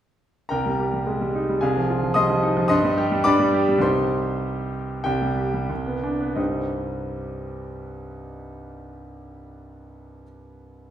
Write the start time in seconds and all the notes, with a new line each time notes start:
0.49 C2 A#4 G5 A#5
0.66 G3
0.79 G4
0.93 G3
1.07 G#3
1.21 G3
1.35 D#4
1.49 G3
1.61 C2 G#4 F5 G#5
1.77 F3
1.90 F4
2.03 F3
2.14 G3 D#5 C6 D#6
2.30 F3
2.43 D#4
2.57 F3
2.68 G2 D#5 C6 D#6
2.84 G3
2.98 G4
3.12 G3
3.24 G2 D5 B5 D6
3.39 G3
3.54 G4
3.69 G3
3.78 C2 G3 D#4 G4 C6
3.83 C5 G5
5.04 C2 G4 G5
5.22 G3
5.38 G4
5.54 G3
5.70 C2
5.86 B3
6.03 D4
6.21 B3
6.35 C2 G2 G3 C4 D#4 G4 D#5